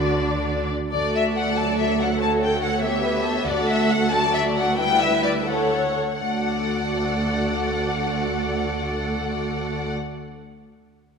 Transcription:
Already playing: D2 D3 D4 F#4 D5
0.93 D2 A3 F#4 A4 D5
1.15 E5
1.36 F#5
1.56 F#3 A4 A5
1.78 E5
2.00 F#5
2.21 A3 F#4 C#5 A5
2.42 G5
2.63 F#5
2.83 B3 G4 E5
3.03 B4
3.26 A4
3.46 D2 A3 F#4 A4 D5 F#5
3.69 E5
3.91 F#5
4.11 F#3 F#4 D5 A5
4.34 E5
4.56 F#5
4.77 G3 E4 B4 E5 G5
5.01 E5
5.23 D5
5.46 A3 A4 C#5 F#5
6.20 D2 A3 F#4 A4 D5 F#5

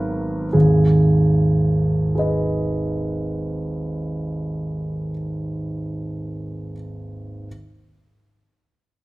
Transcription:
Already playing: G#1 F#3 G#3 B3
0.53 G#1 D#2 G#4
2.15 G#4 B4 D#5

